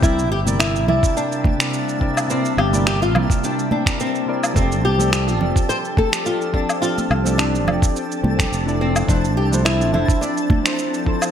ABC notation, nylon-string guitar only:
X:1
M:4/4
L:1/16
Q:"Swing 16ths" 1/4=106
K:Cmix
V:1 name="Nylon-string guitar"
E2 G2 E2 E2 D6 z2 | C2 G2 G F3 D2 D2 C3 z | C2 G2 G F3 c2 A2 F2 D2 | F4 D8- D2 C2 |
D2 G2 E2 E2 D6 z2 |]